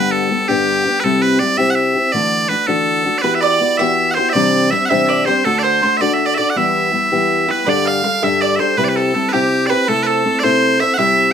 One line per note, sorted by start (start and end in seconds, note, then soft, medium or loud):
0.00 0.30 G2 medium
0.00 0.31 D3 medium
0.00 0.29 G3 medium
0.00 0.30 B3 medium
0.00 0.31 D4 medium
0.00 0.31 G4 medium
0.00 0.11 B4 loud
0.11 0.48 A4 medium
0.31 0.49 G3 medium
0.31 0.49 B3 medium
0.31 0.48 D4 medium
0.31 0.48 G4 medium
0.48 0.86 G2 medium
0.48 0.86 D3 medium
0.48 0.86 G3 medium
0.48 0.86 B3 medium
0.48 0.85 D4 medium
0.48 1.00 G4 loud
0.48 0.84 G4 medium
0.85 1.03 G3 soft
0.85 1.04 B3 soft
0.85 1.04 D4 soft
0.85 1.04 G4 medium
1.00 1.40 C3 medium
1.00 1.22 A4 loud
1.00 1.04 B4 loud
1.04 1.39 G3 medium
1.04 1.40 C4 medium
1.04 1.42 E4 medium
1.04 1.41 G4 medium
1.22 1.39 B4 medium
1.39 1.58 G3 medium
1.39 1.58 C4 medium
1.39 1.58 E4 medium
1.39 1.57 G4 medium
1.39 1.57 D5 medium
1.57 1.96 C3 medium
1.57 1.96 G3 medium
1.57 1.96 C4 medium
1.57 1.96 E4 medium
1.57 1.94 G4 medium
1.57 1.70 E5 loud
1.70 1.75 F#5 medium
1.75 2.12 E5 medium
1.95 2.14 C4 soft
1.95 2.14 E4 soft
1.95 2.14 G4 medium
2.12 2.51 D3 medium
2.12 2.54 E3 medium
2.12 2.49 A3 medium
2.12 2.50 D4 medium
2.12 2.50 F#4 medium
2.12 2.49 D5 loud
2.12 2.51 D5 medium
2.49 2.68 A3 medium
2.49 2.67 D4 medium
2.49 2.67 F#4 medium
2.49 2.67 B4 medium
2.49 2.67 D5 medium
2.67 3.06 D3 medium
2.67 3.08 E3 medium
2.67 3.06 A3 medium
2.67 3.05 D4 medium
2.67 3.05 F#4 medium
2.67 3.18 A4 loud
2.67 3.04 D5 medium
3.05 3.23 A3 soft
3.05 3.23 D4 soft
3.05 3.23 F#4 medium
3.05 3.24 D5 medium
3.18 3.35 B4 medium
3.18 3.22 D5 medium
3.23 3.61 E3 medium
3.23 3.59 B3 medium
3.23 3.60 E4 medium
3.23 3.61 F#4 medium
3.23 3.61 G4 medium
3.23 3.41 B4 medium
3.35 3.41 E5 medium
3.41 3.77 D5 medium
3.41 3.81 D5 medium
3.61 3.79 B3 medium
3.61 3.79 E4 medium
3.61 3.79 F#4 medium
3.61 3.78 G4 medium
3.77 4.17 E3 medium
3.77 4.17 B3 medium
3.77 4.17 E4 medium
3.77 4.17 F#4 medium
3.77 4.15 G4 medium
3.77 4.11 E5 loud
3.77 4.14 E5 loud
4.11 4.29 C5 loud
4.11 4.14 F#5 loud
4.16 4.35 E4 soft
4.16 4.36 F#4 medium
4.16 4.35 G4 soft
4.16 4.34 C5 medium
4.29 4.71 D5 loud
4.29 4.33 E5 loud
4.35 4.72 C3 medium
4.35 4.72 E3 medium
4.35 4.70 G3 medium
4.35 4.71 C4 medium
4.35 4.72 D4 loud
4.35 4.72 G4 medium
4.35 4.69 D5 medium
4.71 4.90 G3 medium
4.71 4.90 D4 medium
4.71 4.89 G4 medium
4.71 4.85 E5 medium
4.71 4.89 E5 medium
4.85 5.25 E5 loud
4.85 4.89 F#5 loud
4.90 5.28 C3 medium
4.90 5.28 E3 medium
4.90 5.28 G3 medium
4.90 5.27 C4 medium
4.90 5.27 D4 medium
4.90 5.26 G4 medium
4.90 5.08 E5 medium
5.09 5.27 D5 medium
5.25 5.46 G3 medium
5.25 5.46 C4 soft
5.25 5.45 D4 soft
5.25 5.46 G4 medium
5.25 5.45 C5 loud
5.25 5.45 C5 medium
5.45 5.83 D3 medium
5.45 5.82 A3 medium
5.45 5.83 D4 medium
5.45 5.83 F#4 medium
5.45 5.59 A4 loud
5.45 5.63 A4 medium
5.45 5.83 A4 medium
5.59 5.63 D5 loud
5.63 5.97 C5 loud
5.63 5.81 C5 medium
5.83 6.01 A3 medium
5.83 6.01 D4 medium
5.83 6.01 F#4 medium
5.83 6.01 A4 medium
5.83 6.00 C5 medium
5.97 6.12 D5 medium
5.97 6.14 D5 medium
5.97 6.01 E5 medium
6.02 6.39 D3 medium
6.02 6.39 A3 medium
6.02 6.39 D4 medium
6.02 6.38 F#4 medium
6.02 6.37 A4 medium
6.14 6.26 E5 medium
6.26 6.34 D5 medium
6.26 6.36 D5 medium
6.34 6.56 A4 medium
6.34 6.55 D5 medium
6.34 6.50 D5 medium
6.34 6.38 E5 medium
6.39 6.56 D4 soft
6.39 6.57 F#4 soft
6.50 6.57 F#5 medium
6.56 6.93 E3 medium
6.56 6.92 G3 medium
6.56 6.92 B3 medium
6.56 6.93 E4 medium
6.56 6.94 G4 medium
6.56 7.26 E5 medium
6.56 7.51 E5 medium
6.93 7.11 G3 medium
6.93 7.11 B3 medium
6.93 7.11 E4 medium
6.93 7.11 G4 medium
7.12 7.49 E3 medium
7.12 7.67 G3 medium
7.12 7.49 B3 medium
7.12 7.48 E4 medium
7.12 7.48 G4 medium
7.48 7.67 B3 medium
7.48 7.67 E4 medium
7.48 7.66 G4 medium
7.48 7.66 B4 medium
7.48 7.69 B4 medium
7.66 8.04 G2 medium
7.66 8.04 D3 medium
7.66 8.03 G3 medium
7.66 8.04 D4 medium
7.66 8.04 G4 loud
7.66 8.04 A4 medium
7.66 7.86 D5 medium
7.66 7.87 D5 loud
7.85 8.02 F5 medium
7.85 8.24 F5 medium
8.04 8.22 G3 medium
8.04 8.22 D4 medium
8.04 8.22 G4 medium
8.04 8.21 A4 medium
8.04 8.21 F5 medium
8.22 8.60 G2 medium
8.22 8.60 D3 medium
8.22 8.60 G3 medium
8.22 8.59 D4 medium
8.22 8.59 G4 medium
8.22 8.58 A4 medium
8.22 8.41 E5 medium
8.22 8.41 E5 loud
8.41 8.56 D5 medium
8.41 8.58 D5 medium
8.56 8.78 A4 medium
8.56 8.76 C5 medium
8.56 8.77 C5 medium
8.56 8.60 E5 medium
8.60 8.77 G3 soft
8.60 8.78 D4 soft
8.60 8.78 G4 medium
8.77 9.14 C3 medium
8.77 9.13 G3 medium
8.77 9.15 C4 medium
8.77 9.16 E4 medium
8.77 9.15 G4 medium
8.77 8.84 B4 medium
8.77 8.95 B4 medium
8.84 8.89 D5 medium
8.89 8.96 B4 medium
8.96 9.29 A4 medium
8.96 9.13 A4 medium
9.14 9.33 G3 medium
9.14 9.32 C4 medium
9.14 9.32 E4 medium
9.14 9.32 G4 medium
9.14 9.33 A4 medium
9.29 9.66 G4 medium
9.29 9.33 B4 medium
9.33 9.71 C3 medium
9.33 9.70 G3 medium
9.33 9.71 C4 medium
9.33 9.71 E4 medium
9.33 9.67 G4 medium
9.33 9.69 G4 medium
9.66 9.88 G4 medium
9.66 9.88 B4 medium
9.66 9.70 D5 medium
9.71 9.88 C4 soft
9.71 9.88 E4 medium
9.88 10.25 C3 medium
9.88 10.24 A3 medium
9.88 10.24 C4 medium
9.88 10.25 E4 medium
9.88 10.05 A4 medium
9.88 10.03 A4 loud
9.88 10.26 A4 loud
10.03 10.41 A4 medium
10.03 10.39 A4 medium
10.03 10.07 B4 medium
10.25 10.43 A3 medium
10.25 10.43 C4 medium
10.25 10.43 E4 medium
10.25 10.43 A4 medium
10.39 10.81 C5 medium
10.39 10.44 D5 loud
10.44 10.81 C3 medium
10.44 10.81 A3 medium
10.44 10.80 C4 medium
10.44 10.80 E4 medium
10.44 10.78 A4 medium
10.44 10.80 C5 loud
10.79 10.97 C4 soft
10.79 10.98 E4 soft
10.79 10.98 A4 medium
10.79 10.94 E5 loud
10.79 10.97 E5 medium
10.94 11.31 E5 loud
10.94 10.98 F#5 loud
10.98 11.33 C3 medium
10.98 11.33 G3 medium
10.98 11.33 C4 medium
10.98 11.33 E4 medium
10.98 11.33 G4 medium
10.98 11.33 E5 medium